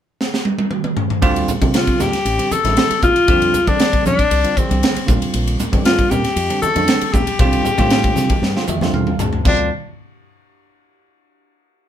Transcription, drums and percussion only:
0.21 snare
0.34 snare
0.45 high tom
0.59 high tom
0.71 mid tom
0.84 mid tom
0.97 floor tom
1.10 floor tom
1.22 kick, ride
1.36 ride
1.48 hi-hat pedal, low conga
1.62 kick, ride, high conga
1.74 snare, ride
1.87 kick, ride
2.00 snare, hi-hat pedal, low conga
2.13 snare, ride
2.26 ride
2.39 ride
2.51 hi-hat pedal, high conga
2.65 snare, ride, high conga
2.77 snare, ride
2.91 ride
3.02 kick, hi-hat pedal, low conga
3.16 ride
3.28 kick, ride
3.42 ride
3.54 hi-hat pedal, low conga
3.67 kick, ride, high conga
3.80 snare, ride
3.93 kick, ride
4.06 hi-hat pedal, low conga
4.19 kick, ride
4.31 ride
4.44 ride
4.57 kick, hi-hat pedal, high conga
4.71 ride, high conga
4.83 snare, ride
4.96 ride
5.08 kick, hi-hat pedal, low conga
5.22 ride
5.34 ride
5.48 ride
5.60 hi-hat pedal, low conga
5.73 kick, ride, high conga
5.85 snare, ride
5.99 kick, ride
6.11 hi-hat pedal, low conga
6.25 snare, ride
6.37 ride
6.50 ride
6.62 hi-hat pedal, high conga
6.76 ride, high conga
6.88 snare, ride
7.01 ride
7.14 kick, hi-hat pedal, low conga
7.27 ride
7.39 kick, ride, low conga
7.53 ride
7.65 hi-hat pedal, low conga
7.78 kick, ride, high conga
7.90 snare, ride
8.04 kick, ride
8.16 snare, hi-hat pedal, high conga
8.30 kick, ride, high conga
8.43 snare
8.57 snare
8.68 hi-hat pedal, mid tom, high conga
8.81 snare, high conga
8.94 mid tom
9.07 mid tom
9.19 floor tom, hi-hat pedal, low conga
9.33 floor tom
9.45 kick, crash, high conga

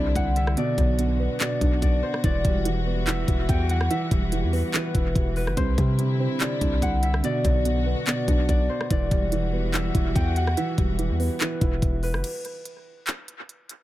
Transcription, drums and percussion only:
0.16 kick, closed hi-hat
0.36 closed hi-hat
0.47 cross-stick
0.57 closed hi-hat
0.78 kick, closed hi-hat
0.99 closed hi-hat
1.40 clap, closed hi-hat
1.61 kick, closed hi-hat
1.82 kick, closed hi-hat
2.14 cross-stick
2.24 kick, closed hi-hat
2.45 kick, closed hi-hat
2.65 closed hi-hat
3.07 clap, closed hi-hat
3.28 kick, closed hi-hat
3.49 kick, closed hi-hat
3.69 closed hi-hat
3.81 cross-stick
3.91 closed hi-hat
4.11 kick, closed hi-hat
4.32 closed hi-hat
4.53 open hi-hat
4.74 clap, closed hi-hat
4.95 kick, closed hi-hat
5.16 kick, closed hi-hat
5.36 open hi-hat
5.47 cross-stick
5.57 kick, closed hi-hat
5.78 kick, closed hi-hat
5.99 closed hi-hat
6.41 clap, closed hi-hat
6.61 kick, closed hi-hat
6.82 kick, closed hi-hat
7.03 closed hi-hat
7.14 cross-stick
7.24 closed hi-hat
7.45 kick, closed hi-hat
7.65 closed hi-hat
8.07 clap, closed hi-hat
8.28 kick, closed hi-hat
8.49 kick, closed hi-hat
8.81 cross-stick
8.91 kick, closed hi-hat
9.11 kick, closed hi-hat
9.32 closed hi-hat
9.74 clap, closed hi-hat
9.95 kick, closed hi-hat
10.16 kick, closed hi-hat
10.36 closed hi-hat
10.47 cross-stick
10.57 closed hi-hat
10.78 kick, closed hi-hat
10.99 closed hi-hat
11.20 open hi-hat
11.41 clap, closed hi-hat
11.61 kick, closed hi-hat
11.82 kick, closed hi-hat
12.03 open hi-hat
12.14 cross-stick
12.24 closed hi-hat, crash
12.45 closed hi-hat
12.65 closed hi-hat
13.07 clap, closed hi-hat
13.28 closed hi-hat
13.49 closed hi-hat
13.69 closed hi-hat

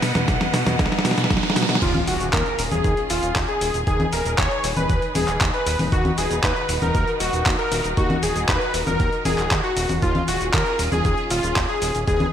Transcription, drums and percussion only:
0.02 snare, open hi-hat, cabasa
0.15 snare, closed hi-hat, high conga, cabasa
0.28 kick, snare, closed hi-hat, cabasa
0.41 snare, closed hi-hat, high conga
0.54 snare, open hi-hat, cabasa
0.66 snare, closed hi-hat, high conga, cabasa
0.79 kick, snare, closed hi-hat, cabasa
0.86 snare
0.92 snare
0.99 snare
1.05 snare, open hi-hat, cabasa
1.11 snare
1.18 snare, closed hi-hat, cabasa
1.24 snare
1.30 kick, snare, closed hi-hat, cabasa
1.37 snare
1.43 snare
1.50 snare
1.56 snare, open hi-hat, cabasa
1.63 snare
1.69 snare, open hi-hat, cabasa
1.75 snare
1.82 kick, closed hi-hat, crash, cabasa
1.95 closed hi-hat, high conga
2.07 open hi-hat, cabasa
2.20 closed hi-hat, cabasa
2.33 kick, clap, closed hi-hat, cabasa
2.46 closed hi-hat
2.59 open hi-hat, cabasa
2.72 closed hi-hat, high conga, cabasa
2.84 kick, closed hi-hat, cabasa
2.97 closed hi-hat
3.10 open hi-hat, cabasa
3.23 closed hi-hat, cabasa
3.36 kick, clap, open hi-hat, cabasa
3.49 closed hi-hat
3.61 open hi-hat, cabasa
3.74 closed hi-hat, cabasa
3.87 kick, closed hi-hat, cabasa
4.00 closed hi-hat, high conga
4.13 open hi-hat, cabasa
4.26 closed hi-hat, cabasa
4.38 kick, clap, closed hi-hat, cabasa
4.51 closed hi-hat
4.64 open hi-hat, cabasa
4.77 closed hi-hat, high conga, cabasa
4.89 kick, closed hi-hat, cabasa
5.02 closed hi-hat
5.15 open hi-hat, high conga, cabasa
5.28 clap, closed hi-hat, cabasa
5.41 kick, clap, closed hi-hat, cabasa
5.54 closed hi-hat
5.67 open hi-hat, cabasa
5.79 open hi-hat, high conga, cabasa
5.92 kick, closed hi-hat, cabasa
6.05 closed hi-hat, high conga
6.18 open hi-hat, cabasa
6.31 closed hi-hat, cabasa
6.43 kick, clap, closed hi-hat, cabasa
6.56 closed hi-hat
6.69 open hi-hat, cabasa
6.82 closed hi-hat, high conga, cabasa
6.95 kick, closed hi-hat, cabasa
7.08 closed hi-hat
7.20 open hi-hat, cabasa
7.33 closed hi-hat, cabasa
7.46 kick, clap, open hi-hat, cabasa
7.59 closed hi-hat
7.72 open hi-hat, cabasa
7.84 closed hi-hat, cabasa
7.97 kick, closed hi-hat, cabasa
8.10 closed hi-hat, high conga
8.23 open hi-hat, cabasa
8.36 closed hi-hat, cabasa
8.49 kick, clap, closed hi-hat, cabasa
8.61 closed hi-hat
8.74 open hi-hat, cabasa
8.87 closed hi-hat, high conga, cabasa
9.00 kick, closed hi-hat, cabasa
9.13 closed hi-hat
9.25 open hi-hat, high conga, cabasa
9.38 clap, closed hi-hat, cabasa
9.51 kick, clap, closed hi-hat, cabasa
9.64 closed hi-hat
9.77 open hi-hat, cabasa
9.89 open hi-hat, high conga, cabasa
10.02 kick, closed hi-hat, cabasa
10.15 closed hi-hat, high conga
10.28 open hi-hat, cabasa
10.41 closed hi-hat, cabasa
10.53 kick, clap, closed hi-hat, cabasa
10.66 closed hi-hat
10.79 open hi-hat, cabasa
10.92 closed hi-hat, high conga, cabasa
11.05 kick, closed hi-hat, cabasa
11.18 closed hi-hat
11.30 open hi-hat, cabasa
11.43 closed hi-hat, cabasa
11.56 kick, clap, open hi-hat, cabasa
11.69 closed hi-hat
11.82 open hi-hat, cabasa
11.95 closed hi-hat, cabasa
12.07 kick, closed hi-hat, cabasa
12.20 closed hi-hat, high conga

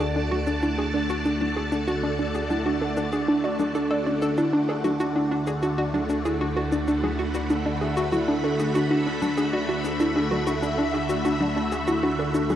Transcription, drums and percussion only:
0.00 shaker
0.31 high conga
0.47 shaker
0.62 shaker
1.09 shaker
1.25 shaker
1.41 high conga
1.72 shaker
1.88 shaker
2.34 shaker
2.50 high conga, shaker
2.97 shaker
3.12 shaker
3.59 high conga, shaker
3.75 shaker
4.22 shaker
4.38 shaker
4.85 high conga, shaker
5.00 shaker
5.47 shaker
5.63 shaker
5.94 high conga
6.09 shaker
6.25 shaker
6.72 shaker
6.88 shaker
7.03 high conga
7.34 shaker
7.50 shaker
7.97 shaker
8.13 high conga, shaker
8.59 shaker
8.75 shaker
9.22 high conga, shaker
9.38 shaker
9.84 shaker
10.00 shaker
10.31 high conga
10.47 shaker
10.63 shaker
11.09 shaker
11.25 shaker
11.41 high conga
11.72 shaker
11.87 shaker
12.34 shaker
12.50 high conga, shaker

